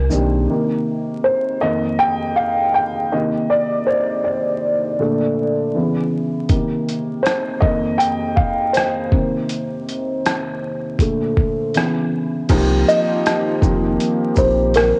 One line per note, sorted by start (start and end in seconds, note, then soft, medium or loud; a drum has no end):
0.00 0.46 A#4 medium
0.10 0.47 B1 medium
0.10 0.41 D#3 medium
0.10 0.41 A#3 soft
0.10 0.41 C4 medium
0.10 0.42 D4 medium
0.10 0.42 G4 medium
0.10 shaker soft
0.50 1.58 C3 medium
0.50 1.58 D#3 soft
0.50 1.59 A#3 medium
1.24 1.59 C5 medium
1.61 2.70 F2 soft
1.61 2.71 D#3 soft
1.61 2.71 A#3 medium
1.61 2.00 D#5 medium
1.99 2.38 G5 loud
2.36 2.75 F5 medium
2.74 3.13 G5 medium
3.12 4.21 C3 soft
3.12 4.21 D#3 soft
3.12 4.21 A#3 medium
3.12 3.51 D#5 medium
3.50 3.88 D5 medium
3.87 4.26 C5 medium
4.24 5.33 D5 medium
4.99 5.51 A#2 soft
4.99 5.52 D3 soft
4.99 5.52 A3 medium
5.74 6.46 C#3 soft
5.74 6.46 E3 soft
5.74 6.46 B3 medium
6.49 7.01 C3 medium
6.49 7.01 D#3 soft
6.49 7.02 A#3 medium
6.49 kick loud
6.49 closed hi-hat medium
6.89 closed hi-hat soft
7.23 7.59 C5 medium
7.23 cross-stick loud
7.23 closed hi-hat medium
7.61 8.13 F2 medium
7.61 8.14 D#3 soft
7.61 8.14 A#3 medium
7.61 7.96 D#5 medium
7.61 kick loud
7.98 8.07 G5 medium
7.98 closed hi-hat medium
8.36 8.45 F5 medium
8.36 kick medium
8.73 11.70 C5 medium
8.73 closed hi-hat medium
8.77 cross-stick medium
9.11 9.63 C3 medium
9.11 9.64 D#3 soft
9.11 9.64 A#3 medium
9.11 kick loud
9.49 closed hi-hat medium
9.89 closed hi-hat soft
10.26 cross-stick loud
10.26 closed hi-hat medium
10.99 11.71 A#2 medium
10.99 11.71 D3 soft
10.99 11.71 A3 medium
10.99 kick medium
10.99 closed hi-hat medium
11.37 kick medium
11.74 12.46 C#3 soft
11.74 12.46 E3 soft
11.74 12.47 B3 medium
11.74 cross-stick medium
11.74 closed hi-hat medium
12.49 12.84 C2 loud
12.49 14.99 D#3 medium
12.49 13.52 F3 loud
12.49 14.99 A#3 medium
12.49 13.52 A#3 loud
12.49 13.53 C4 loud
12.49 13.61 D#4 medium
12.49 13.53 D#4 loud
12.49 13.61 F4 medium
12.49 13.53 G4 loud
12.49 kick loud
12.49 closed hi-hat medium
12.49 crash medium
12.89 14.34 D#5 medium
12.89 closed hi-hat soft
12.89 shaker soft
13.26 cross-stick loud
13.26 closed hi-hat medium
13.61 13.97 F1 loud
13.61 14.23 F3 medium
13.61 14.24 A#3 medium
13.61 14.24 C4 medium
13.61 14.24 D#4 medium
13.61 14.99 G4 medium
13.61 14.25 G4 medium
13.61 kick loud
13.61 shaker soft
14.00 closed hi-hat medium
14.35 14.92 A#1 medium
14.35 14.99 F3 medium
14.35 14.99 A#3 medium
14.35 14.99 C4 medium
14.35 14.99 D#4 medium
14.35 14.99 G4 medium
14.35 14.72 C5 medium
14.35 kick medium
14.35 shaker soft
14.74 14.99 A#4 medium
14.74 cross-stick loud
14.74 closed hi-hat medium